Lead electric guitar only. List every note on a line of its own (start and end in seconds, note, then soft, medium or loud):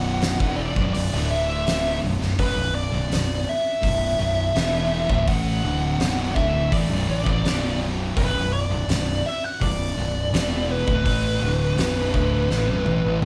0.00 0.61 F#5 loud
0.56 0.93 D5 medium
0.94 1.30 D5 medium
1.31 1.99 E5 medium
2.39 2.75 B4 medium
2.75 3.49 D5 medium
3.49 5.25 E5 loud
5.28 6.35 F#5 loud
6.36 6.69 E5 loud
6.73 7.09 D5 medium
7.10 7.77 D5 medium
8.17 8.53 B4 medium
8.53 9.27 D5 loud
9.26 9.44 E5 loud
9.44 9.62 F#5 loud
9.62 10.71 D5 medium
10.71 13.19 B4 medium